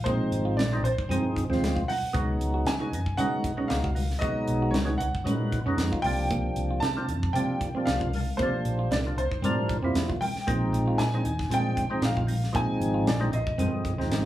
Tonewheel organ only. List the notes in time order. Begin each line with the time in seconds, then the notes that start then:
0.06 F3 G#3 C4 D#4
0.73 F3 G#3 C4 D#4
0.86 C4 D4
1.10 F3 C4 D#4 G#4
1.50 F3 G#3 C4 F4
1.89 C4 D#4
2.13 F#3 G#3 B3 D#4
2.80 F#3 G#3 B3 D#4
2.94 B3 D#4
3.19 F#3 G#3 B3 D#4
3.57 F#3 G#3 B3 D#4
3.95 B3 D#4
4.20 F#3 G#3 B3 D#4
4.85 F#3 G#3 B3 C#4
4.99 B3 D#4
5.24 F#3 G#3 D#4 B4
5.67 F#3 G#3 B3 D#4
6.05 F3 G3 A#3 D4
6.97 F3 G3 A#3 C4
7.10 A#3 D4
7.36 F3 G3 A#3 D4
7.76 F3 G3 A#3 D4
8.15 A#3 D4
8.42 F3 G3 A#3 D4
9.06 F3 G3 A#3 D4
9.19 A#3 D4
9.44 F3 G3 D4 A#4
9.83 F3 G3 A#3 E4
10.22 A#3 C4
10.47 F3 G#3 C4 D#4
11.14 F3 G#3 C4 D#4
11.25 C4 D#4
11.50 F3 G#3 C4 D4
11.90 F3 G#3 C4 D#4
12.27 C4 D#4
12.53 F3 G#3 C4 D#4
13.20 F3 G#3 C4 D#4
13.32 C4 F4
13.59 D3 F3 C4 G#4
13.98 F3 G#3 C4 D#4